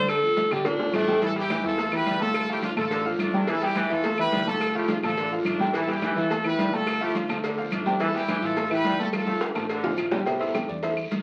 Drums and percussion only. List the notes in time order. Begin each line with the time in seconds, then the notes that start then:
0.08 cowbell, long guiro, claves, maracas
0.23 high conga, maracas
0.37 cowbell, high conga, short guiro, maracas
0.51 cowbell, high conga, low conga, short guiro, claves, maracas
0.65 cowbell, high bongo, high conga, low conga, long guiro, maracas
0.79 low bongo, high conga, maracas
0.93 cowbell, low bongo, high conga, short guiro, claves, maracas
1.07 low bongo, high conga, short guiro, maracas
1.22 cowbell, high conga, long guiro, maracas
1.36 cowbell, maracas
1.50 cowbell, high conga, short guiro, claves, maracas
1.64 high conga, short guiro, maracas
1.78 cowbell, long guiro, maracas
1.92 high conga, claves, maracas
2.06 cowbell, high conga, short guiro, maracas
2.20 high conga, short guiro, maracas
2.34 cowbell, high conga, long guiro, claves, maracas
2.48 high conga, maracas
2.62 cowbell, high conga, short guiro, maracas
2.77 cowbell, high conga, low conga, short guiro, claves, maracas
2.91 cowbell, high conga, long guiro, maracas
3.05 high conga, maracas
3.19 cowbell, high conga, short guiro, claves, maracas
3.33 high conga, short guiro, maracas
3.47 cowbell, high conga, long guiro, maracas
3.61 cowbell, high conga, maracas
3.75 cowbell, high conga, short guiro, claves, maracas
3.89 high conga, short guiro, maracas
4.04 cowbell, high conga, long guiro, maracas
4.18 high conga, claves, maracas
4.32 cowbell, high conga, short guiro, maracas
4.46 high conga, short guiro, maracas
4.60 cowbell, high conga, long guiro, claves, maracas
4.74 high conga, maracas
4.88 cowbell, high conga, short guiro, maracas
5.03 cowbell, high conga, low conga, short guiro, claves, maracas
5.17 cowbell, high conga, long guiro, maracas
5.31 high conga, maracas
5.45 cowbell, high conga, short guiro, claves, maracas
5.59 high conga, short guiro, maracas
5.74 cowbell, long guiro, maracas
5.88 cowbell, high conga, maracas
6.02 cowbell, high conga, short guiro, claves, maracas
6.16 high conga, short guiro, maracas
6.30 cowbell, long guiro, maracas
6.44 high conga, claves, maracas
6.59 cowbell, high conga, short guiro, maracas
6.73 short guiro, maracas
6.87 cowbell, high conga, long guiro, claves, maracas
7.01 high conga, maracas
7.15 cowbell, high conga, short guiro, maracas
7.29 cowbell, high conga, low conga, short guiro, claves, maracas
7.43 cowbell, high conga, long guiro, maracas
7.58 high conga, maracas
7.71 cowbell, high conga, short guiro, claves, maracas
7.86 high conga, short guiro, maracas
8.00 cowbell, high conga, long guiro, maracas
8.14 cowbell, maracas
8.28 cowbell, high conga, short guiro, claves, maracas
8.42 high conga, short guiro, maracas
8.57 cowbell, high conga, maracas
8.71 high conga, claves, maracas
8.84 cowbell, high conga, short guiro, maracas
8.98 short guiro, maracas
9.12 cowbell, high conga, long guiro, claves, maracas
9.27 high conga, maracas
9.41 cowbell, high bongo, short guiro, maracas
9.55 cowbell, high bongo, short guiro, claves, maracas
9.69 cowbell, long guiro, maracas
9.83 low bongo, low conga, maracas
9.98 cowbell, short guiro, claves, maracas
10.11 low bongo, low conga, short guiro, maracas
10.26 cowbell, high conga, long guiro, maracas
10.41 cowbell, high conga, maracas
10.54 cowbell, high conga, short guiro, claves, maracas
10.68 high conga, short guiro, maracas
10.82 cowbell, high conga, long guiro, maracas
10.97 high conga, claves, maracas
11.11 cowbell, high conga, short guiro, maracas